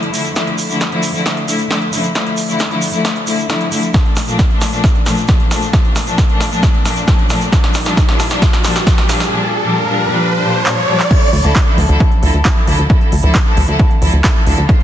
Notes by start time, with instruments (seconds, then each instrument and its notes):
0.03 closed hi-hat
0.14 string section D3 F3 A3 E4, open hi-hat, shaker
0.25 closed hi-hat, shaker
0.35 string section D3 F3 A3 E4, snare, closed hi-hat, shaker
0.47 closed hi-hat
0.58 open hi-hat, shaker
0.70 string section D3 F3 A3 E4, closed hi-hat, shaker
0.81 snare, closed hi-hat, shaker
0.92 string section D3 F3 A3 E4, closed hi-hat
1.03 open hi-hat, shaker
1.15 string section D3 F3 A3 E4, closed hi-hat, shaker
1.26 snare, closed hi-hat, shaker
1.37 closed hi-hat
1.48 string section D3 F3 A3 E4, open hi-hat, shaker
1.59 closed hi-hat, shaker
1.70 string section D3 F3 A3 E4, snare, closed hi-hat, shaker
1.82 closed hi-hat
1.93 string section D3 F3 A3 E4, open hi-hat, shaker
2.04 closed hi-hat, shaker
2.15 string section D3 F3 A3 E4, snare, closed hi-hat, shaker
2.26 closed hi-hat
2.37 open hi-hat, shaker
2.49 string section D3 F3 A3 E4, closed hi-hat, shaker
2.59 snare, closed hi-hat, shaker
2.71 string section D3 F3 A3 E4, closed hi-hat
2.82 open hi-hat, shaker
2.93 string section D3 F3 A3 E4, closed hi-hat, shaker
3.05 snare, closed hi-hat, shaker
3.16 closed hi-hat
3.27 string section D3 F3 A3 E4, open hi-hat, shaker
3.38 closed hi-hat, shaker
3.49 string section D3 F3 A3 E4, snare, closed hi-hat, shaker
3.61 closed hi-hat
3.72 string section D3 F3 A3 E4, open hi-hat, shaker
3.83 closed hi-hat, shaker
3.94 string section A#2 F3 A3 D4, kick, snare, closed hi-hat, riser, shaker
4.06 closed hi-hat
4.16 snare, open hi-hat, shaker
4.28 string section A#2 F3 A3 D4, closed hi-hat, shaker
4.39 kick, snare, closed hi-hat, shaker
4.50 string section A#2 F3 A3 D4, closed hi-hat
4.61 snare, open hi-hat, shaker
4.73 string section A#2 F3 A3 D4, closed hi-hat, shaker
4.84 kick, snare, closed hi-hat, shaker
4.95 closed hi-hat
5.06 string section A#2 F3 A3 D4, snare, open hi-hat, shaker
5.17 closed hi-hat, shaker
5.28 string section A#2 D4, kick, snare, closed hi-hat, shaker
5.40 closed hi-hat
5.51 string section A#2 F3 A3 D4, snare, open hi-hat, shaker
5.62 closed hi-hat, shaker
5.73 string section A#2 D4, kick, snare, closed hi-hat, shaker
5.85 closed hi-hat
5.96 snare, open hi-hat, shaker
6.07 string section A#2 F3 A3 D4, closed hi-hat, shaker
6.18 kick, snare, closed hi-hat, shaker
6.29 string section A#2 F3 A3 D4, closed hi-hat
6.41 snare, open hi-hat, shaker
6.52 string section A#2 F3 A3 D4, closed hi-hat, shaker
6.63 kick, snare, closed hi-hat, shaker
6.74 closed hi-hat
6.85 string section A#2 F3 A3 D4, snare, open hi-hat, shaker
6.97 closed hi-hat, shaker
7.08 string section A#2 F3 A3 D4, kick, snare, closed hi-hat, shaker
7.19 closed hi-hat
7.30 string section A#2 F3 A3 D4, snare, open hi-hat, shaker
7.41 closed hi-hat, shaker
7.52 string section A#2 F3 G3 D4, kick, snare, closed hi-hat, shaker
7.64 snare, closed hi-hat
7.74 snare, open hi-hat, shaker
7.85 string section A#2 F3 G3 D4, snare, closed hi-hat, shaker
7.97 kick, snare, closed hi-hat, shaker
8.09 string section A#2 F3 G3 D4, snare, closed hi-hat
8.19 snare, open hi-hat, shaker
8.30 string section A#2 F3 G3 D4, snare, closed hi-hat, shaker
8.42 kick, snare, closed hi-hat, shaker
8.53 snare, closed hi-hat
8.64 string section A#2 F3 G3 D4, snare, open hi-hat, shaker
8.76 snare, shaker
8.87 string section A#2 F3 G3 D4, kick, snare, closed hi-hat, shaker
8.98 snare, closed hi-hat
9.09 string section A#2 F3 G3 D4, snare, open hi-hat, shaker
9.20 snare, closed hi-hat, shaker
9.32 string section A#2 F3 G3 D4
9.65 string section A#2 F3 G3 D4
9.87 string section A#2 F3 G3 D4
10.10 string section A#2 F3 G3 D4
10.43 string section A#2 F3 G3 D4
10.66 string section A#2 F3 G3 D4, clap
10.88 string section A#2 F3 G3 D4
11.00 clap
11.10 string section D3 F3 E4 A4, kick, closed hi-hat, crash
11.22 closed hi-hat
11.33 analog synth bass D2, open hi-hat
11.44 analog synth bass D2, string section D3 F3 E4 A4, closed hi-hat
11.55 kick, clap, closed hi-hat
11.66 string section D3 F3 E4 A4, closed hi-hat
11.78 analog synth bass D2, open hi-hat
11.89 analog synth bass D2, string section D3 F3 E4 A4, closed hi-hat
12.00 kick, closed hi-hat
12.12 closed hi-hat
12.23 analog synth bass D2, string section D3 F3 E4 A4, open hi-hat
12.34 analog synth bass D2, closed hi-hat
12.45 string section D3 F3 E4, kick, clap, closed hi-hat
12.56 closed hi-hat
12.67 analog synth bass D2, string section D3 F3 E4 A4, open hi-hat
12.79 analog synth bass D2, closed hi-hat
12.90 string section D3 F3 E4 A4, kick, closed hi-hat
13.01 closed hi-hat
13.12 analog synth bass D2, open hi-hat
13.23 analog synth bass D2, string section D3 F3 E4 A4, closed hi-hat
13.35 kick, clap, closed hi-hat
13.46 string section D3 F3 E4 A4, closed hi-hat
13.57 analog synth bass D2, open hi-hat
13.68 analog synth bass D2, string section D3 F3 E4 A4, closed hi-hat
13.79 kick, closed hi-hat
13.91 closed hi-hat
14.02 analog synth bass D2, string section D3 F3 E4 A4, open hi-hat
14.13 analog synth bass D2, closed hi-hat
14.24 kick, clap, closed hi-hat
14.35 closed hi-hat
14.47 analog synth bass D2, string section D3 F3 E4 A4, open hi-hat
14.58 analog synth bass D2, closed hi-hat
14.69 string section F3 F4, kick, closed hi-hat
14.80 closed hi-hat